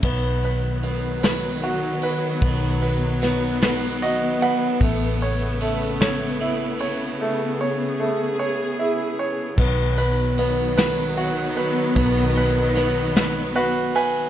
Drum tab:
CC |x-----|------|------|------|
RD |-xxxxx|xxxxxx|xxxxxx|------|
SD |---o--|--oo--|---o--|------|
BD |o-----|o-----|o-----|------|

CC |x-----|------|
RD |-xxxxx|xxxxxx|
SD |---o--|--oo--|
BD |o-----|o-----|